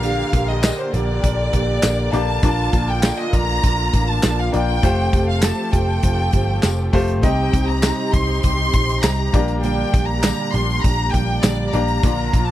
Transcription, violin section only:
0.00 0.49 F5 medium
0.50 0.79 D#5 medium
0.80 0.94 C5 medium
0.94 2.14 D5 medium
2.13 2.88 A5 loud
2.89 3.19 G5 medium
3.19 3.33 D#5 loud
3.34 4.09 A#5 loud
4.09 4.39 A5 loud
4.40 4.54 F5 medium
4.54 5.25 G5 loud
5.29 5.44 F5 medium
5.43 5.73 A5 medium
5.74 6.94 G5 medium
7.24 7.66 G5 medium
7.68 8.13 A#5 medium
8.13 8.42 C6 medium
8.43 8.99 C6 loud
9.03 9.48 A#5 medium
9.62 10.04 G5 medium
10.06 10.52 A#5 medium
10.52 10.83 C6 loud
10.81 11.13 A#5 loud
11.11 11.42 G5 loud
11.41 11.72 D5 medium
11.72 12.48 A#5 medium
12.46 12.51 A5 medium

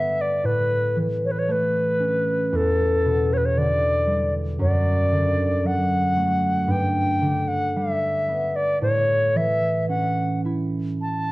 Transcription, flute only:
0.00 0.23 E5 medium
0.21 0.47 D5 medium
0.46 0.98 B4 medium
1.25 1.33 C#5 medium
1.31 1.40 B4 soft
1.39 1.53 C#5 medium
1.51 2.57 B4 medium
2.56 3.35 A4 medium
3.33 3.39 C#5 medium
3.37 3.47 B4 medium
3.45 3.59 C#5 medium
3.58 4.34 D5 medium
4.61 5.68 D5 medium
5.67 6.72 F#5 medium
6.71 7.50 G5 medium
7.48 7.78 F#5 medium
7.77 8.58 E5 medium
8.56 8.82 D5 medium
8.82 9.38 C#5 medium
9.37 9.88 E5 medium
9.89 10.41 F#5 medium
11.01 11.32 A5 medium

